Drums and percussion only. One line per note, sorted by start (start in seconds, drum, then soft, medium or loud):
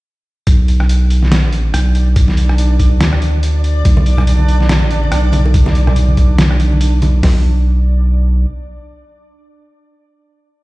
0.47 kick loud
0.47 closed hi-hat medium
0.68 closed hi-hat medium
0.80 cross-stick medium
0.89 closed hi-hat medium
1.10 closed hi-hat medium
1.23 snare soft
1.32 snare loud
1.32 closed hi-hat medium
1.53 closed hi-hat medium
1.74 cross-stick medium
1.74 closed hi-hat medium
1.95 closed hi-hat medium
2.16 kick loud
2.16 closed hi-hat medium
2.28 snare soft
2.37 closed hi-hat medium
2.49 cross-stick medium
2.58 closed hi-hat medium
2.79 kick medium
2.79 closed hi-hat medium
3.01 snare loud
3.01 closed hi-hat medium
3.13 cross-stick medium
3.22 closed hi-hat medium
3.43 closed hi-hat medium
3.64 closed hi-hat medium
3.85 kick loud
3.85 closed hi-hat medium
3.97 high bongo soft
3.97 high conga medium
4.06 closed hi-hat medium
4.17 cross-stick medium
4.17 high bongo soft
4.17 low conga medium
4.27 closed hi-hat medium
4.39 high conga medium
4.49 closed hi-hat medium
4.61 snare soft
4.69 snare loud
4.69 closed hi-hat medium
4.69 high conga medium
4.91 closed hi-hat medium
5.03 high conga medium
5.12 cross-stick medium
5.12 closed hi-hat medium
5.32 closed hi-hat medium
5.32 high conga loud
5.46 high bongo medium
5.54 kick loud
5.54 closed hi-hat medium
5.66 snare soft
5.66 high conga loud
5.75 closed hi-hat soft
5.87 cross-stick soft
5.87 high bongo medium
5.87 low conga medium
5.96 closed hi-hat medium
6.08 high conga medium
6.17 kick medium
6.17 closed hi-hat medium
6.38 snare loud
6.38 closed hi-hat medium
6.38 high conga medium
6.51 cross-stick soft
6.60 closed hi-hat medium
6.72 high conga medium
6.81 closed hi-hat medium
7.02 closed hi-hat medium
7.02 high conga loud
7.23 kick loud
7.23 snare loud
7.23 open hi-hat loud